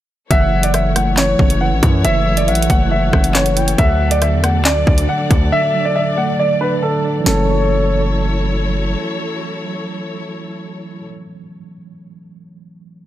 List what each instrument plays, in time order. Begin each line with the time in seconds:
0.31 808-style bass F#1, tine electric piano E3, string section F#3 E4 A4 C#5, grand piano E5, soft synth lead F#5, kick, closed hi-hat
0.52 tine electric piano F#3
0.63 grand piano D5, closed hi-hat
0.74 tine electric piano E3, grand piano E5, cross-stick, closed hi-hat
0.96 tine electric piano A3, grand piano F#5, cross-stick, closed hi-hat
1.17 tine electric piano E3, grand piano C#5, snare, clap
1.39 808-style bass F#1, tine electric piano C#4, kick
1.50 closed hi-hat
1.61 tine electric piano E3, grand piano F#5
1.72 808-style bass A1
1.83 808-style bass F#2, tine electric piano E4, kick, closed hi-hat
2.04 808-style bass F#1, tine electric piano E3, grand piano E5, soft synth lead E5, closed hi-hat
2.26 tine electric piano F#3
2.37 grand piano D5, closed hi-hat
2.48 808-style bass A1, tine electric piano E3, grand piano E5, soft synth lead F#5, closed hi-hat
2.55 closed hi-hat
2.62 closed hi-hat
2.70 808-style bass F#1, tine electric piano A3, grand piano F#5, kick, closed hi-hat
2.91 tine electric piano E3, grand piano E5
3.13 808-style bass F#1, tine electric piano C#4, kick, cross-stick
3.24 closed hi-hat
3.35 tine electric piano E3, grand piano C#5, snare, clap
3.46 closed hi-hat
3.57 tine electric piano E4, soft synth lead G5, closed hi-hat
3.68 closed hi-hat
3.78 808-style bass D2, tine electric piano D3, string section D4 D5, grand piano E5, soft synth lead F#5, kick, closed hi-hat
4.00 tine electric piano F#3
4.11 grand piano D5, closed hi-hat
4.22 tine electric piano D3, grand piano E5, cross-stick, closed hi-hat
4.33 808-style bass E2
4.44 tine electric piano A3, grand piano F#5, cross-stick, closed hi-hat
4.60 808-style bass D2
4.65 tine electric piano D3, grand piano D5, snare, clap
4.87 808-style bass D2, tine electric piano D4, kick
4.98 closed hi-hat
5.09 tine electric piano D3, grand piano F#5
5.31 808-style bass D2, tine electric piano D5, kick, closed hi-hat
5.52 tine electric piano D3, grand piano E5, soft synth lead E5
5.74 tine electric piano F#3
5.85 grand piano D5
5.96 tine electric piano D3, soft synth lead D5, grand piano E5
6.18 tine electric piano A3, grand piano F#5
6.39 tine electric piano D3, grand piano D5
6.61 tine electric piano D4, grand piano B4
6.83 tine electric piano D3, grand piano A4
7.04 tine electric piano D5
7.20 tine electric piano E3
7.24 808-style bass F#1, tine electric piano F#3 A3, string section F#3 E4 A4 C#5, grand piano A4, soft synth lead C#5, snare
7.32 tine electric piano C#4